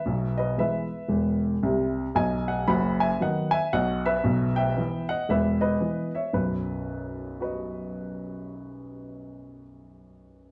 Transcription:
Already playing: B4 E5
0.06 B1 B2
0.38 B4 D#5
0.58 E3 G#3 B3 B4 E5
1.08 E1 E2
1.63 C2 C3
2.15 B1 B2 D#5 G#5
2.48 D#5 F#5
2.68 F#1 F#2 F#5 B5
3.00 E5 G#5
3.20 D#3 F#3 B3 D#5 F#5
3.51 E5 G#5
3.73 B1 B2 D#5 F#5
4.06 B4 E5
4.24 B1 B2
4.56 E5 G5
4.77 E3 B3
5.09 D#5 F#5
5.29 E1 E2 B4 E5
5.61 B4 D#5
5.80 E3 B3
6.15 C#5 E5
6.33 B1 F#2 B4
7.40 F#4 B4 D#5

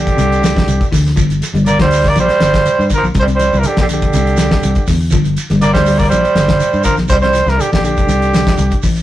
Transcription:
Already playing: A#1 D3 G4
0.07 kick, closed hi-hat, shekere
0.17 C2 C3, closed hi-hat, shekere
0.32 closed hi-hat, shekere
0.42 D3, snare, closed hi-hat, shekere
0.55 E3, kick, snare, shekere
0.67 C2, closed hi-hat, shekere
0.81 kick, closed hi-hat, shekere
0.92 D2 E3, kick, snare, open hi-hat, shekere
1.06 snare, shekere
1.16 G1 F3, kick, closed hi-hat, shekere
1.30 closed hi-hat, shekere
1.42 snare, closed hi-hat, shekere
1.53 G1 G3, closed hi-hat, shekere
1.66 A#3 D5, closed hi-hat, shekere
1.79 D2 F3 G3 C5, kick, snare, closed hi-hat, shekere
1.91 open hi-hat, shekere
2.04 kick, snare, shekere
2.08 A#3 D5
2.15 A#1 E3, closed hi-hat, shekere
2.20 G3 C5
2.29 snare, closed hi-hat, shekere
2.40 G1, snare, closed hi-hat, shekere
2.54 kick, snare, closed hi-hat, shekere
2.66 closed hi-hat, shekere
2.79 G2, shekere
2.90 D3, kick, closed hi-hat, shekere
2.94 F3 A#4
3.03 A#1, shekere
3.15 C2, kick, closed hi-hat, shekere
3.20 G3 C5
3.27 C3, closed hi-hat, shekere
3.35 G3 C5
3.39 E3, closed hi-hat, shekere
3.53 C2, shekere
3.58 E3 A#4
3.63 G4, closed hi-hat, shekere
3.68 D3
3.77 A#1, kick, snare, closed hi-hat, shekere
3.81 D3 G4
3.89 D3, closed hi-hat, shekere
3.94 G4
4.02 kick, closed hi-hat, shekere
4.13 C2 C3, closed hi-hat, shekere
4.26 closed hi-hat, shekere
4.37 D3, snare, closed hi-hat, shekere
4.51 E3, kick, snare, shekere
4.63 C2, closed hi-hat, shekere
4.75 kick, closed hi-hat, shekere
4.87 E2 D3, kick, snare, open hi-hat, shekere
5.00 shekere
5.11 G1 F3, kick, closed hi-hat, shekere
5.24 closed hi-hat, shekere
5.37 closed hi-hat, shekere
5.50 G1 G3, snare, closed hi-hat, shekere
5.62 A#3 D5, closed hi-hat, shekere
5.73 D2 G3 C5, kick, snare, closed hi-hat, shekere
5.86 G3, open hi-hat, shekere
5.98 A#3 D5, kick, shekere
6.09 E3 G3 C5, closed hi-hat, shekere
6.13 A#1
6.25 closed hi-hat, shekere
6.35 G1, snare, closed hi-hat, shekere
6.48 kick, snare, closed hi-hat, shekere
6.60 closed hi-hat, shekere
6.73 G2, shekere
6.83 D3 F3 A#4, kick, closed hi-hat, shekere
6.97 A#1, snare, shekere
7.08 C2 G3 C5, kick, closed hi-hat, shekere
7.21 C3 G3 C5, snare, closed hi-hat, shekere
7.33 E3, snare, closed hi-hat, shekere
7.46 C2 E3 A#4, snare, shekere
7.58 D3 G4, closed hi-hat, shekere
7.71 A#1 D3 G4, kick, snare, closed hi-hat, shekere
7.83 D3 G4, closed hi-hat, shekere
7.97 kick, closed hi-hat, shekere
8.07 C2, muted clean electric guitar stroke, closed hi-hat, shekere
8.22 closed hi-hat, shekere
8.33 D3, snare, closed hi-hat, shekere
8.47 E3, kick, snare, shekere
8.58 C2, closed hi-hat, shekere
8.71 kick, closed hi-hat, shekere
8.83 A1 E3, kick, open hi-hat, shekere
8.96 shekere

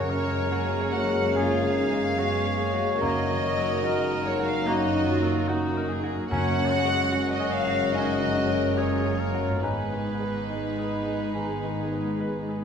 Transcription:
Already playing: F#1 F#2 C#3 G#3 C#4 F#4 G#4 A#4 C#5 G#5
0.09 A#3 G#4 A#4
0.24 G#3
0.52 F#4 G#4 G#5
0.80 C#5
0.94 F#4 C#5 F#5
1.08 F#4
1.14 G#4
1.35 F#2 C#3 C#4 F4 G#4 F5 G#5
1.56 C#4
1.63 C#3
1.78 D#4
1.90 G#3
2.18 G#3 B3 C#4 F#4 G#4 C#5 G#5
2.45 C#5
2.60 A#3 C#5
2.74 F#4
3.01 F#1 F#2 F#3 A#3 D#4 F#4 A#4 D#5 A#5
3.21 A#3
3.29 D#3
3.42 A#3 A#4
3.57 F#3
3.63 D#5
3.84 G#3 F#4 A#4
4.12 A#4
4.26 C#5
4.40 F#4
4.47 F#3 F5
4.66 F#2 F#3 A#3 D#4 F#4 D#5 A#5
4.88 A#3
4.94 D#3
5.07 F4
5.22 F#3
5.49 A#3 D#4 F#4
5.77 A#4
5.89 G#4 A#4
6.04 F#4
6.31 F#1 F#2 G#3 A#3 C#4 F#4 F#5 G#5
6.52 C#4
6.57 C#3
6.71 G#3 F#4 G#4
6.85 G#3
7.12 F#3 C#4 F#4 A#4 G#5
7.34 D#5
7.40 G#4
7.53 C#5 F5
7.67 F#4
7.73 G#4
7.94 F#2 C#3 F#3 C#4 D#4 D#5 G#5
8.14 C#4
8.22 C#3
8.36 C#4 G#4
8.49 G#3
8.77 F#3 G#3 F4 G#4 C#5 G#5
9.06 G#4
9.19 A#3 A#4 C#5
9.34 F#4
9.41 G#4
9.62 G#1 G#2 G#3 B3 D#4 G#4 B4 G#5
9.84 B3
9.92 D#3
10.06 G#4
10.20 G#3
10.27 D#5
10.48 D#4 G#5
10.70 D#5
10.79 G#4
11.06 D#4
11.13 G#4
11.34 G#2 D#3 D#4 G#5
11.56 B3
11.63 D#3
11.77 G#4
11.91 G#3
11.98 D#5
12.20 D#4 B4 G#5
12.41 D#5
12.49 G#4

